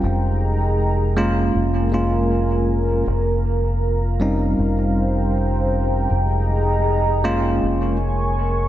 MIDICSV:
0, 0, Header, 1, 4, 480
1, 0, Start_track
1, 0, Key_signature, -4, "minor"
1, 0, Tempo, 759494
1, 16, Time_signature, 4, 2, 24, 8
1, 5488, End_track
2, 0, Start_track
2, 0, Title_t, "Analog synth pad"
2, 0, Program_c, 0, 89
2, 0, Note_on_c, 0, 79, 64
2, 11, Note_on_c, 0, 75, 70
2, 15, Note_on_c, 0, 68, 80
2, 15, Note_on_c, 0, 82, 80
2, 956, Note_off_c, 0, 79, 0
2, 960, Note_off_c, 0, 82, 0
2, 964, Note_off_c, 0, 75, 0
2, 966, Note_off_c, 0, 68, 0
2, 967, Note_on_c, 0, 82, 75
2, 969, Note_on_c, 0, 80, 61
2, 970, Note_on_c, 0, 70, 69
2, 1923, Note_off_c, 0, 80, 0
2, 1929, Note_on_c, 0, 77, 72
2, 2874, Note_off_c, 0, 70, 0
2, 2893, Note_on_c, 0, 79, 64
2, 2895, Note_on_c, 0, 72, 69
2, 3827, Note_off_c, 0, 82, 0
2, 3834, Note_off_c, 0, 77, 0
2, 3846, Note_off_c, 0, 72, 0
2, 3848, Note_on_c, 0, 82, 85
2, 3851, Note_on_c, 0, 68, 77
2, 3853, Note_on_c, 0, 75, 70
2, 4795, Note_off_c, 0, 79, 0
2, 4803, Note_off_c, 0, 82, 0
2, 4804, Note_off_c, 0, 68, 0
2, 4805, Note_off_c, 0, 75, 0
2, 4806, Note_on_c, 0, 70, 66
2, 4810, Note_on_c, 0, 85, 72
2, 4812, Note_on_c, 0, 80, 62
2, 5488, Note_off_c, 0, 70, 0
2, 5488, Note_off_c, 0, 80, 0
2, 5488, Note_off_c, 0, 85, 0
2, 5488, End_track
3, 0, Start_track
3, 0, Title_t, "Tine electric piano"
3, 0, Program_c, 1, 4
3, 737, Note_on_c, 1, 56, 81
3, 740, Note_on_c, 1, 58, 74
3, 741, Note_on_c, 1, 61, 73
3, 745, Note_on_c, 1, 65, 84
3, 1190, Note_off_c, 1, 56, 0
3, 1191, Note_off_c, 1, 58, 0
3, 1192, Note_off_c, 1, 61, 0
3, 1194, Note_off_c, 1, 65, 0
3, 1214, Note_on_c, 1, 56, 63
3, 1217, Note_on_c, 1, 58, 58
3, 1224, Note_on_c, 1, 61, 62
3, 1228, Note_on_c, 1, 65, 76
3, 1922, Note_off_c, 1, 56, 0
3, 1923, Note_off_c, 1, 58, 0
3, 1927, Note_off_c, 1, 61, 0
3, 1929, Note_off_c, 1, 65, 0
3, 2653, Note_on_c, 1, 55, 68
3, 2660, Note_on_c, 1, 60, 64
3, 2663, Note_on_c, 1, 61, 61
3, 2667, Note_on_c, 1, 63, 75
3, 3841, Note_off_c, 1, 55, 0
3, 3845, Note_off_c, 1, 60, 0
3, 3846, Note_off_c, 1, 61, 0
3, 3849, Note_off_c, 1, 63, 0
3, 4576, Note_on_c, 1, 56, 84
3, 4578, Note_on_c, 1, 58, 74
3, 4581, Note_on_c, 1, 61, 73
3, 4581, Note_on_c, 1, 65, 93
3, 5029, Note_off_c, 1, 56, 0
3, 5030, Note_off_c, 1, 58, 0
3, 5032, Note_off_c, 1, 61, 0
3, 5032, Note_off_c, 1, 65, 0
3, 5488, End_track
4, 0, Start_track
4, 0, Title_t, "Fingered electric bass"
4, 0, Program_c, 2, 33
4, 21, Note_on_c, 2, 29, 80
4, 956, Note_off_c, 2, 29, 0
4, 980, Note_on_c, 2, 29, 68
4, 1916, Note_off_c, 2, 29, 0
4, 1941, Note_on_c, 2, 29, 77
4, 2876, Note_off_c, 2, 29, 0
4, 2899, Note_on_c, 2, 29, 70
4, 3835, Note_off_c, 2, 29, 0
4, 3860, Note_on_c, 2, 29, 72
4, 4796, Note_off_c, 2, 29, 0
4, 4823, Note_on_c, 2, 29, 76
4, 5488, Note_off_c, 2, 29, 0
4, 5488, End_track
0, 0, End_of_file